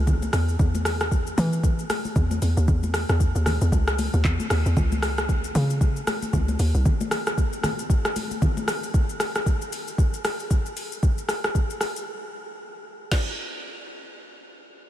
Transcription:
Already playing: log drum bass C#2
0.07 kick, low conga, shaker
0.22 high conga, shaker
0.33 log drum bass E2, cross-stick, open hi-hat, shaker
0.49 shaker
0.59 log drum bass E2, kick, low conga, shaker
0.75 high conga, shaker
0.85 cross-stick, open hi-hat, shaker
1.01 cross-stick, shaker
1.11 kick, shaker
1.27 shaker
1.38 log drum bass E3, open hi-hat, high conga, low conga, shaker
1.53 shaker
1.64 kick, shaker
1.79 shaker
1.90 cross-stick, open hi-hat, high conga, shaker
2.05 high conga, shaker
2.16 log drum bass E2, kick, low conga, shaker
2.31 high conga, shaker
2.42 log drum bass E2, open hi-hat, shaker
2.57 log drum bass D#2, shaker
2.68 log drum bass E2, kick, low conga, shaker
2.83 high conga, shaker
2.94 cross-stick, open hi-hat, shaker
3.09 log drum bass E2, cross-stick, shaker
3.20 kick, shaker
3.35 log drum bass D#2, shaker
3.46 cross-stick, open hi-hat, high conga, low conga, shaker
3.61 log drum bass E2, shaker
3.72 log drum bass C#2, kick, shaker
3.88 cross-stick, shaker
3.99 open hi-hat, high conga, shaker
4.14 log drum bass D#2, high conga, shaker
4.25 log drum bass E2, kick, clap, low conga, shaker
4.40 high conga, shaker
4.50 log drum bass D#2, cross-stick, open hi-hat, shaker
4.66 log drum bass E2, shaker
4.77 log drum bass C#2, kick, low conga, shaker
4.92 high conga, shaker
5.03 cross-stick, open hi-hat, shaker
5.18 cross-stick, shaker
5.29 kick, shaker
5.44 shaker
5.55 log drum bass C#3, open hi-hat, high conga, low conga, shaker
5.70 shaker
5.81 kick, shaker
5.96 shaker
6.07 cross-stick, open hi-hat, high conga, shaker
6.22 high conga, shaker
6.33 log drum bass C#2, kick, low conga, shaker
6.48 high conga, shaker
6.59 log drum bass D#2, open hi-hat, shaker
6.74 log drum bass C2, shaker
6.85 kick, low conga, shaker
7.01 high conga, shaker
7.11 cross-stick, open hi-hat, shaker
7.27 cross-stick, shaker
7.38 kick, shaker
7.53 shaker
7.63 cross-stick, open hi-hat, high conga, low conga, shaker
7.79 shaker
7.90 kick, shaker
8.05 cross-stick, shaker
8.16 open hi-hat, high conga, shaker
8.31 high conga, shaker
8.42 kick, low conga, shaker
8.57 high conga, shaker
8.68 cross-stick, open hi-hat, shaker
8.83 shaker
8.94 kick, shaker
9.09 shaker
9.20 cross-stick, open hi-hat, shaker
9.35 cross-stick, shaker
9.46 kick, shaker
9.62 shaker
9.73 open hi-hat, shaker
9.88 shaker
9.98 kick, shaker
10.14 shaker
10.25 cross-stick, open hi-hat, shaker
10.40 shaker
10.51 kick, shaker
10.66 shaker
10.77 open hi-hat, shaker
10.92 shaker
11.03 kick, shaker
11.18 shaker
11.29 cross-stick, open hi-hat, shaker
11.44 cross-stick, shaker
11.55 kick, shaker
11.70 shaker
11.81 cross-stick, open hi-hat, shaker
11.96 shaker
13.12 kick, snare, crash

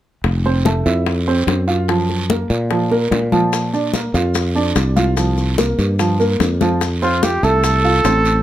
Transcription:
0.24 fretless electric bass F1, high bongo, high conga, long guiro
0.45 grand piano C4 C5, high conga
0.65 grand piano A3 A4, high bongo, high conga, short guiro
0.86 fretless electric bass F2, grand piano E4 E5, short guiro
1.06 high bongo, high conga, long guiro
1.27 grand piano C4 C5, high conga
1.47 fretless electric bass F#2, high bongo, low bongo, high conga, short guiro
1.68 grand piano F4 F5, short guiro
1.88 grand piano F3 F4, high bongo, high conga, long guiro
2.09 high bongo, high conga
2.29 grand piano A#3 A#4, high bongo, high conga, short guiro
2.50 fretless electric bass A#2, high conga, short guiro
2.70 grand piano F3 F4, high bongo, high conga, long guiro
2.91 grand piano A#3 A#4, high bongo, high conga
3.11 fretless electric bass A#2, high bongo, low bongo, high conga, short guiro
3.32 grand piano F3 F4, high bongo, high conga, short guiro
3.53 high bongo, high conga, long guiro, maracas
3.73 grand piano D4 D5, high conga, maracas
3.94 grand piano A#3 A#4, high bongo, high conga, short guiro, maracas
4.14 fretless electric bass F2, grand piano F4 F5, short guiro, maracas
4.35 high bongo, high conga, long guiro, maracas
4.55 grand piano D4 D5, high conga, maracas
4.76 fretless electric bass C2, high bongo, low bongo, high conga, short guiro, maracas
4.96 grand piano F4 F5, high conga, short guiro, maracas
5.17 grand piano F3 F4, high bongo, high conga, long guiro, maracas
5.37 high bongo, high conga, maracas
5.58 grand piano A#3 A#4, high bongo, high conga, short guiro, maracas
5.79 fretless electric bass G2, high conga, short guiro, maracas
5.99 grand piano F3 F4, high bongo, high conga, long guiro, maracas
6.20 grand piano A#3 A#4, high bongo, high conga, maracas
6.40 fretless electric bass F2, high bongo, low bongo, high conga, short guiro, maracas
6.61 grand piano F3 F4, high bongo, high conga, short guiro, maracas
6.81 high bongo, high conga, long guiro, maracas
7.02 grand piano C4 C5, trumpet F4, high conga, maracas
7.23 grand piano F4 F5, trumpet G4, high bongo, high conga, short guiro, maracas
7.43 fretless electric bass C2, grand piano A3 A4, trumpet A4, short guiro, maracas
7.64 high bongo, high conga, long guiro, maracas
7.84 grand piano F4 F5, high conga, maracas
8.05 fretless electric bass A1, grand piano C4 C5, high bongo, low bongo, high conga, short guiro, maracas
8.25 short guiro, maracas

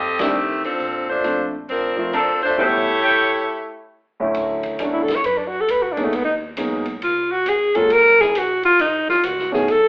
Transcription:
Already playing: upright bass F2, saxophone section C4 G4 A4 D#5
0.19 saxophone section D#3 A3 C4 G4, grand piano G3 A3 C4 D4, snare, ride
0.35 upright bass A1
0.64 saxophone section F3 C4 D4 A4, open hi-hat
0.80 upright bass A#1, open hi-hat
1.10 saxophone section A3 D4 F4 C5
1.24 grand piano F3 A3 C4 D4, closed hi-hat
1.68 upright bass F1, saxophone section F3 C4 D4 A#4, open hi-hat
1.96 grand piano F3 A3 C4 F4
2.13 saxophone section F3 C4 D4 A4, trumpet section A#4 C5 D5 A5, closed hi-hat
2.41 saxophone section A3 D4 F4 C5, muted upright bass stroke, open hi-hat
2.58 grand piano A2 G3 B3 C#4 E4, saxophone section A3 E4 G4 C#5, trumpet section A4 C#5 E5 G5
3.02 trumpet section A4 C#5 E5 G5
4.20 grand piano D2 F#3 A3 C#4 E4
4.34 upright bass D2, ride
4.63 kick, ride
4.79 upright bass E2, grand piano F#3 A3 C#4 D4 E4, hi-hat pedal, ride
4.93 alto saxophone E4
5.03 alto saxophone A4
5.08 snare, ride
5.16 alto saxophone C#5
5.24 upright bass F#2, alto saxophone B4, ride
5.37 alto saxophone D4
5.47 alto saxophone F#4
5.61 alto saxophone A4
5.68 upright bass D2, alto saxophone B4, hi-hat pedal, ride
5.83 alto saxophone F#4
5.92 alto saxophone D4
5.97 grand piano F#3 G#3 A#3 B3 D#4, ride
6.04 alto saxophone A3
6.13 upright bass D#2, alto saxophone B3, ride
6.25 alto saxophone D#4
6.57 upright bass B1, grand piano F#3 G#3 A#3 B3 D#4, hi-hat pedal, ride
6.86 ride
7.02 upright bass C#2, alto saxophone F4, ride
7.32 alto saxophone F#4
7.45 upright bass G#1, alto saxophone G#4, hi-hat pedal, ride
7.75 grand piano F#3 G#3 A#3 C#4 F4, alto saxophone A4, ride
7.90 upright bass F#1, alto saxophone A#4, ride
8.06 snare
8.21 alto saxophone G#4, snare
8.35 upright bass A#1, alto saxophone F#4, hi-hat pedal, ride
8.63 alto saxophone F4, ride
8.79 upright bass C2, alto saxophone D#4, ride
9.08 alto saxophone F4, muted upright bass stroke, snare
9.23 upright bass C#2, alto saxophone F#4, hi-hat pedal, ride
9.39 snare
9.52 grand piano D#3 A3 B3 C#4 F#4, alto saxophone G#4, snare
9.68 upright bass B1, alto saxophone A4, ride

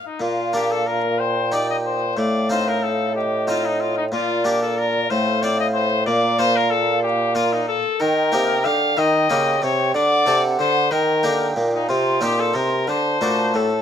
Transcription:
0.06 trumpet D#4
0.20 harpsichord A#2, bassoon A#2, trumpet F4, flute F5
0.53 harpsichord A#3 D4 F4, trumpet G4
0.71 trumpet A4
0.87 trumpet A#4
1.19 trumpet C5, flute G5
1.52 harpsichord D#4 G4, trumpet D5
1.70 trumpet D#5
1.86 trumpet C5
2.17 harpsichord A2, bassoon A2, trumpet D5, flute F5
2.50 harpsichord C4 D#4 F4, trumpet C5
2.68 trumpet A#4
2.83 trumpet A4
3.15 trumpet G4, flute D#5
3.47 harpsichord C4 D#4 F4, trumpet F4
3.65 trumpet D#4
3.80 trumpet F4
3.97 trumpet D#4
4.11 harpsichord A#2, bassoon A#2, trumpet F4, flute D5
4.45 harpsichord A#3 D4 F4, trumpet G4
4.62 trumpet A4
4.78 trumpet A#4
5.10 bassoon A2, harpsichord A2, trumpet C5, flute F5
5.43 harpsichord C4 F4, trumpet D5
5.60 trumpet D#5
5.74 trumpet C5
6.06 harpsichord A#2, bassoon A#2, trumpet D5, flute F5
6.39 harpsichord A#3 F4, trumpet C5
6.56 trumpet A#4
6.71 trumpet A4
7.03 trumpet G4
7.35 harpsichord A#3 F4, trumpet F4
7.53 trumpet D#4
7.68 trumpet A4
8.00 harpsichord D#3, bassoon D#3, trumpet A#4, flute G5
8.32 harpsichord C3 A#3 D#4 G4, bassoon C3
8.64 harpsichord D3, bassoon D3, trumpet F5
8.97 harpsichord D#3, bassoon D#3, trumpet D#5, flute G5
9.30 harpsichord C#3 A#3 C#4 G4, bassoon C#3
9.62 harpsichord C3, bassoon C3, trumpet C#5
9.94 bassoon D3, harpsichord D3, trumpet D5, flute F#5
10.26 harpsichord C3 D4 A4, bassoon C3
10.59 harpsichord D3, bassoon D3, trumpet C5
10.91 harpsichord D#3, bassoon D#3, trumpet A#4, flute G5
11.23 harpsichord D3 A#3 D#4 G4, bassoon D3
11.56 harpsichord A#2, bassoon A#2
11.73 trumpet D#4
11.89 harpsichord C3, bassoon C3, trumpet F4, flute C6
12.21 harpsichord A#2 C4 D#4 G4, bassoon A#2, trumpet G4
12.40 trumpet A4
12.54 harpsichord C3, bassoon C3, trumpet A#4
12.86 harpsichord D3, bassoon D3, trumpet C5, flute A5
13.21 bassoon A#2, harpsichord A#2 A3 D4 F#4
13.54 harpsichord A2, bassoon A2, trumpet A4

